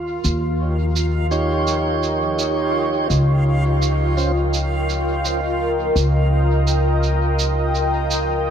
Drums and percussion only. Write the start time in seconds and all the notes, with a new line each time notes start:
0.24 cabasa
0.96 cabasa
1.31 cabasa
1.67 cabasa
2.03 cabasa
2.39 cabasa
3.10 cabasa
3.82 cabasa
4.18 cabasa
4.53 cabasa
4.89 cabasa
5.25 cabasa
5.96 cabasa
6.67 cabasa
7.03 cabasa
7.39 cabasa
7.75 cabasa
8.11 cabasa